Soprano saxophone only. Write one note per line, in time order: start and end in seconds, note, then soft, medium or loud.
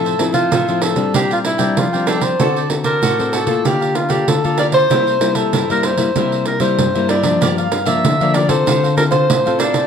0.00 0.31 A4 medium
0.34 0.84 F4 medium
0.83 1.14 A4 medium
1.15 1.30 G4 medium
1.33 1.39 F4 medium
1.46 1.80 E4 medium
1.79 2.10 F4 medium
2.08 2.24 A4 medium
2.22 2.59 C5 medium
2.85 3.35 A#4 medium
3.33 3.68 A4 medium
3.66 3.97 G4 medium
3.96 4.12 F4 medium
4.11 4.30 G4 medium
4.29 4.59 A4 medium
4.59 4.66 D5 medium
4.74 5.37 C5 medium
5.35 5.68 A4 medium
5.71 5.86 A#4 medium
5.84 6.47 C5 medium
6.47 6.61 A#4 medium
6.61 7.06 C5 medium
7.09 7.54 D5 medium
7.59 7.88 F5 medium
7.86 8.36 E5 medium
8.35 8.51 D5 medium
8.50 8.96 C5 medium
8.97 9.04 A#4 medium
9.12 9.61 C5 medium
9.59 9.87 D5 medium